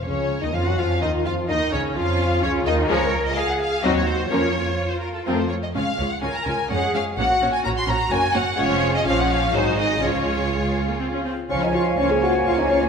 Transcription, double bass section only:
X:1
M:3/4
L:1/16
Q:1/4=126
K:Ebdor
V:1 name="Double bass section" clef=bass
D,,3 E,, F,, G,, F,,2 E,,2 F,,2 | E,,2 D,,2 F,,4 D,,2 E,,2 | D,,4 z4 E,,4 | F,,4 z4 F,,4 |
[K:Db] D,,2 D,,2 D,,2 D,,2 F,,2 F,,2 | B,,,2 B,,,2 B,,,2 B,,,2 G,,,2 G,,,2 | F,,,4 B,,,4 A,,,4 | D,,8- D,,2 z2 |
D,,4 D,,4 D,,4 |]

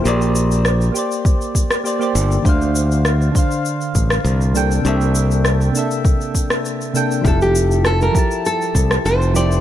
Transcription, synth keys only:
X:1
M:4/4
L:1/16
Q:1/4=100
K:Cmix
V:1 name="Synth keys"
[B,Gcd]6 [B,Gcd]6 [B,Gcd] [B,Gcd]3 | [D,Dcf]6 [D,Dcf]8 [C,B,DAg]2 | [C,B,DAe]6 [C,B,DAe]8 [C,B,DAg]2 | [F,EGA]6 [F,EGa]8 [F,EGc]2 |]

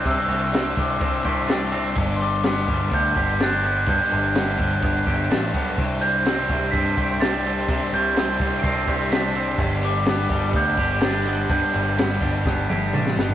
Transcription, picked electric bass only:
X:1
M:4/4
L:1/16
Q:1/4=126
K:G
V:1 name="Picked electric bass" clef=bass
C, z C,,4 C,,2 C,,2 C,,6 | G,,,6 G,,,2 D,,2 G,,,6 | G,, z G,,,4 G,,,2 G,,,2 G,,,2 A,,,2 B,,,2 | C,,6 C,,2 G,,2 C,,6 |
C, z C,,4 C,,2 C,,2 C,,6 | G,,,6 G,,,2 D,,2 G,,,6 | G,, z G,,,4 G,,,2 G,,,2 G,,,2 A,,,2 G,,,2 |]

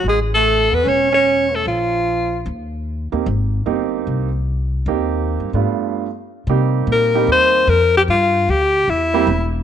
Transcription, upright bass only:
X:1
M:4/4
L:1/8
Q:"Swing" 1/4=150
K:Cphr
V:1 name="Upright bass" clef=bass
=A,,,3 =E,, =E,,,4 | B,,,4 E,,3 E,, | A,,,2 G,,,2 C,,4 | E,,2- (3E,, G,, A,, z4 |
C,2 B,,2 E,,2 F,,2 | G,,2 =D,,2 =E,,2 =E,,,2 |]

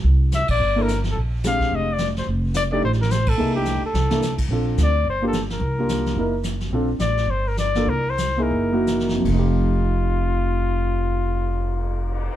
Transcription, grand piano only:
X:1
M:4/4
L:1/8
Q:"Swing" 1/4=216
K:Fmix
V:1 name="Grand piano"
z4 z [B,D=EA] z2 | z2 [_A,CDG]3 z3 | z3 [A,DEG] z4 | [B,E=E_A] [=A,D_EG]2 z2 [B,D=E=A] z2 |
[CDFA]3 z2 [B,DFG] z2 | z [B,DFG]3 [B,E=EB] z3 | [CDFA] z6 [B,DFA] | z3 [B,^D=E^G]2 [B,_E_F_G]3 |
[F,,F,A,EG]8- | [F,,F,A,EG]8 |]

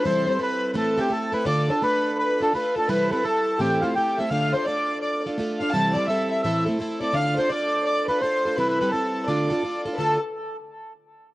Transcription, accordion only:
X:1
M:4/4
L:1/16
Q:"Swing" 1/4=169
K:Ddor
V:1 name="Accordion"
c2 c2 B3- B/2 B/2 A2 G2 A2 B2 | d2 A2 B4 B2 A2 B2 A2 | B2 B2 A4 G2 F2 G2 e2 | f2 c2 d4 d2 z4 f2 |
a2 d2 e2 e2 e2 z4 d2 | f2 c2 d4 d2 B2 c4 | (3B2 B2 B2 A4 d6 z2 | A2 z12 z2 |]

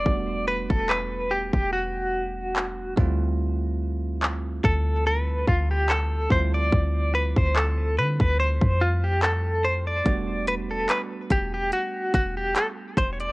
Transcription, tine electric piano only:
X:1
M:4/4
L:1/8
Q:"Swing 16ths" 1/4=72
K:Ephr
V:1 name="Tine electric piano"
[G,A,B,D^F]6- [G,A,B,DF] [G,A,CE=F]- | [G,A,CEF]6- [G,A,CEF] [G,A,CEF]- | [G,A,CEF]6- [G,A,CEF] z | [G,A,B,D^F]8 |]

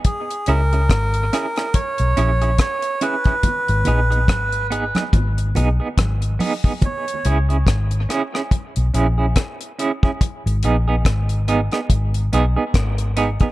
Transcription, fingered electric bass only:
X:1
M:4/4
L:1/16
Q:"Swing 16ths" 1/4=71
K:C#dor
V:1 name="Fingered electric bass" clef=bass
z2 C,,2 G,,,2 z3 B,,, A,,,2 z4 | z G,,, A,,,2 G,,,3 z G,,,2 B,,, z G,,,2 z2 | z2 C,,2 G,,,2 z3 B,,, A,,,2 z4 | z G,,, A,,,2 G,,,3 z G,,,2 B,,, z G,,,3 z |]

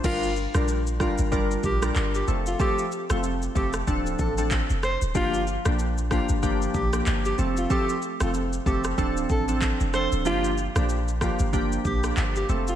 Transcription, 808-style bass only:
X:1
M:4/4
L:1/16
Q:"Swing 16ths" 1/4=94
K:Gm
V:1 name="808-style bass" clef=bass
G,,,3 B,,,4 G,,,3 B,,,2 G,,,2 F,,,2 | z3 F,,,3 F,,,2 D,,,2 A,,,3 F,,,2 D,,, | G,,,3 B,,,4 G,,,3 B,,,2 G,,,2 F,,,2 | z3 F,,,3 F,,,2 D,,,2 A,,,3 F,,,2 D,,, |
G,,,3 B,,,4 G,,,3 B,,,2 G,,,2 F,,,2 |]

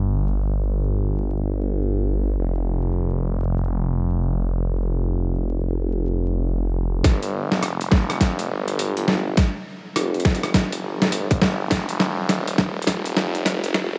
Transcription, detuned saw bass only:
X:1
M:4/4
L:1/16
Q:"Swing 16ths" 1/4=103
K:Fmix
V:1 name="Detuned saw bass" clef=bass
G,,,16 | F,,,16- | F,,,16 | G,,, G,,,3 F,,,6 G,,,3 G,,,3 |
z4 F,,,6 G,,,3 G,,, G,,,2 | F,,, F,,,3 E,,,6 F,,,3 F,,,3 |]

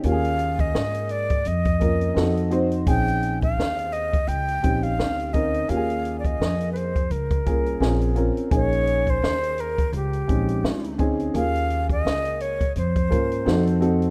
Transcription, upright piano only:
X:1
M:4/4
L:1/8
Q:"Swing 16ths" 1/4=85
K:Bbdor
V:1 name="Upright piano"
[B,DFGA]4 z [B,DFB] [CE_G=A] [CEGc] | [CDEA]4 z [CDEG]2 [CDEB] | [B,DFGA]4 z [B,DFA] [CDFA] [CDFB] | [B,DEA]4 z [A,CDE]2 [CDEA] |
[B,DFA]4 z [B,DFB] [CE_G=A] [CEGA] |]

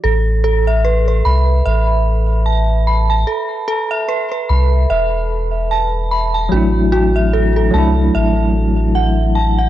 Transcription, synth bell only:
X:1
M:4/4
L:1/16
Q:"Swing 16ths" 1/4=74
K:Ador
V:1 name="Synth bell"
A z A e B B b2 e z3 a2 b a | A z A e B B b2 e z3 a2 b a | F z F e A A a2 e z3 f2 a f |]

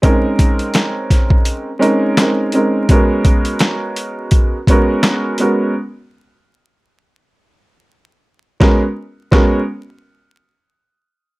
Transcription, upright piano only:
X:1
M:4/4
L:1/8
Q:"Swing 16ths" 1/4=84
K:A#phr
V:1 name="Upright piano"
[G,^B,CDA]4- [G,B,CDA] [G,B,CDA] [G,B,CDA] [G,B,CDA] | [G,B,CFA]4- [G,B,CFA] [G,B,CFA]2 [G,B,CFA] | z8 | [G,B,CFA] z [G,B,CFA] z4 z |]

